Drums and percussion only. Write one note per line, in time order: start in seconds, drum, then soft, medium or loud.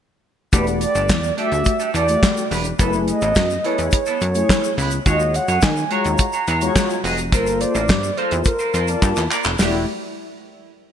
0.53 kick loud
0.53 closed hi-hat medium
0.53 shaker medium
0.67 closed hi-hat soft
0.67 shaker medium
0.81 closed hi-hat medium
0.81 shaker medium
0.95 closed hi-hat soft
0.95 shaker medium
1.09 kick loud
1.09 snare loud
1.09 clap loud
1.09 shaker medium
1.24 shaker soft
1.38 closed hi-hat medium
1.52 closed hi-hat soft
1.52 shaker soft
1.65 kick loud
1.65 closed hi-hat medium
1.65 shaker medium
1.80 closed hi-hat soft
1.80 shaker soft
1.95 closed hi-hat medium
1.95 shaker medium
2.08 closed hi-hat medium
2.08 shaker medium
2.23 kick loud
2.23 snare loud
2.23 clap medium
2.23 shaker medium
2.37 closed hi-hat soft
2.37 shaker soft
2.51 open hi-hat medium
2.51 shaker medium
2.64 closed hi-hat soft
2.64 shaker medium
2.79 kick loud
2.79 closed hi-hat medium
2.79 shaker medium
2.93 shaker soft
3.08 closed hi-hat medium
3.08 shaker medium
3.21 closed hi-hat soft
3.21 shaker medium
3.35 kick loud
3.35 snare loud
3.35 clap medium
3.35 shaker medium
3.50 shaker medium
3.64 closed hi-hat medium
3.78 closed hi-hat medium
3.78 shaker soft
3.91 kick loud
3.91 closed hi-hat loud
3.91 shaker medium
4.06 closed hi-hat soft
4.06 shaker soft
4.21 closed hi-hat medium
4.21 shaker medium
4.35 closed hi-hat medium
4.35 shaker medium
4.49 kick loud
4.49 snare loud
4.49 clap medium
4.49 shaker medium
4.64 shaker medium
4.78 open hi-hat medium
4.78 shaker medium
4.91 closed hi-hat medium
4.91 shaker medium
5.06 kick loud
5.06 closed hi-hat medium
5.06 shaker medium
5.20 shaker medium
5.34 closed hi-hat medium
5.34 shaker medium
5.48 closed hi-hat soft
5.48 shaker medium
5.62 kick loud
5.62 snare loud
5.62 clap medium
5.62 shaker medium
5.77 shaker medium
5.91 closed hi-hat medium
6.04 closed hi-hat soft
6.04 shaker medium
6.18 kick loud
6.18 closed hi-hat loud
6.18 shaker medium
6.33 closed hi-hat soft
6.33 shaker medium
6.47 closed hi-hat medium
6.47 shaker soft
6.61 closed hi-hat medium
6.61 shaker medium
6.76 kick loud
6.76 snare loud
6.76 clap medium
6.76 shaker medium
6.90 closed hi-hat soft
6.90 shaker soft
7.04 open hi-hat medium
7.04 shaker medium
7.18 closed hi-hat medium
7.18 shaker medium
7.32 kick loud
7.32 closed hi-hat medium
7.32 shaker medium
7.47 closed hi-hat soft
7.47 shaker medium
7.61 closed hi-hat medium
7.61 shaker medium
7.75 closed hi-hat soft
7.75 shaker medium
7.88 kick loud
7.88 snare loud
7.88 clap medium
7.88 shaker medium
8.03 shaker medium
8.18 closed hi-hat medium
8.31 closed hi-hat medium
8.31 shaker soft
8.44 kick loud
8.44 closed hi-hat loud
8.44 shaker medium
8.59 shaker soft
8.74 closed hi-hat medium
8.74 shaker soft
8.88 closed hi-hat medium
8.88 shaker medium
9.02 kick loud
9.02 clap medium
9.02 shaker medium
9.16 clap medium
9.16 shaker medium
9.31 clap medium
9.31 shaker medium
9.43 clap medium
9.43 shaker medium
9.59 snare medium
9.59 open hi-hat medium
9.59 shaker medium